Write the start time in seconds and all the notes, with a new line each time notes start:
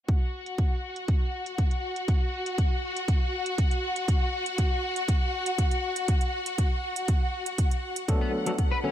0.09 F#4 F#5, kick, closed hi-hat
0.46 closed hi-hat
0.58 kick, closed hi-hat
0.96 closed hi-hat
1.08 kick, closed hi-hat
1.46 closed hi-hat
1.58 kick, closed hi-hat
1.71 closed hi-hat
1.96 closed hi-hat
2.08 kick, closed hi-hat
2.46 closed hi-hat
2.58 kick, closed hi-hat
2.96 closed hi-hat
3.08 kick, closed hi-hat
3.46 closed hi-hat
3.58 kick, closed hi-hat
3.71 closed hi-hat
3.96 closed hi-hat
4.08 kick, closed hi-hat
4.46 closed hi-hat
4.58 kick, closed hi-hat
4.96 closed hi-hat
5.08 kick, closed hi-hat
5.46 closed hi-hat
5.58 kick, closed hi-hat
5.71 closed hi-hat
5.96 closed hi-hat
6.08 kick, closed hi-hat
6.21 closed hi-hat
6.46 closed hi-hat
6.58 kick, closed hi-hat
6.96 closed hi-hat
7.08 kick, closed hi-hat
7.46 closed hi-hat
7.58 kick, closed hi-hat
7.71 closed hi-hat
7.96 closed hi-hat
8.08 F#3 A3 B3 D4 A4 F#5, kick, closed hi-hat
8.21 B3
8.46 F#3 A3 B3 D4 A4, closed hi-hat
8.58 kick, closed hi-hat
8.71 B4
8.84 D3 F#3 A3 B3 C#4 A4